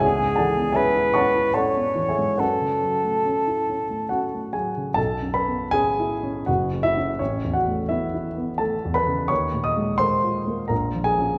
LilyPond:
<<
  \new Staff \with { instrumentName = "Cor anglais" } { \time 3/4 \key b \dorian \tempo 4 = 82 gis'4 b'4 cis''4 | a'2~ a'8 r8 | r2. | r2. |
r2. | }
  \new Staff \with { instrumentName = "Grand piano" } { \time 3/4 \key b \dorian <gis' cis'' e'' gis''>8 <a' d'' fis'' a''>8 <gis' cis'' e'' gis''>8 <cis'' fis'' a'' cis'''>8 \tuplet 3/2 { <a' d'' fis'' a''>4 <gis' cis'' e'' gis''>8 } | <fis' b' d'' fis''>2 <fis' fis''>8 <gis' gis''>8 | <a' a''>8 <b' b''>8 <gis' gis''>4 <fis' fis''>8 <e' e''>8 | <cis' cis''>8 <fis' fis''>8 <e' e''>4 <a' a''>8 <b' b''>8 |
<cis'' cis'''>8 <dis'' dis'''>8 <c'' c'''>4 <ais' ais''>8 <gis' gis''>8 | }
  \new Staff \with { instrumentName = "Grand piano" } { \time 3/4 \key b \dorian cis,16 gis,16 e16 b16 cis'16 e'16 cis'16 e'16 cis'16 b16 e16 gis,16 | fis,16 cis16 fis16 a16 cis'16 e'16 cis'16 a16 cis'16 a16 fis16 cis16 | \tuplet 3/2 { b,,8 fis,8 b8 cis'8 e'8 cis'8 fis,,8 cis8 <cis' e'>8 } | \tuplet 3/2 { a,,8 e,8 a8 b8 e'8 b8 a8 e,8 cis8 } |
\tuplet 3/2 { dis,8 ais,8 gis8 ais8 eis'8 ais8 ais,,8 eis8 <cis' eis'>8 } | }
>>